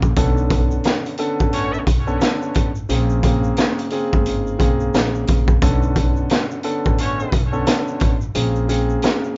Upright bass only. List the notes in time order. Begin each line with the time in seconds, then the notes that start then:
Already playing: A#1
0.17 B1
1.40 A1
1.87 B1
2.56 A1
2.90 A#1
4.13 G#1
4.60 B1
4.94 A#1
5.29 A#1
5.62 B1
6.86 A1
7.33 B1
8.01 A1
8.35 A#1